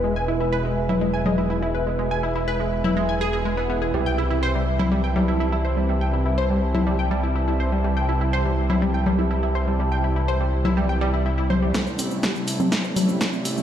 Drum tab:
HH |----------------|----------------|----------------|----------------|
SH |----------------|----------------|----------------|----------------|
SD |----------------|----------------|----------------|----------------|
CG |-------O--O-----|-------O--------|-------O--O-----|-------O--------|
BD |----------------|----------------|----------------|----------------|

HH |----------------|----------------|--o---o---o---o-|
SH |----------------|----------------|xxxxxxxxxxxxxxxx|
SD |----------------|----------------|o---o---o---o---|
CG |-------O--O-----|-------O------O-|-------O--O-----|
BD |----------------|----------------|o---o---o---o---|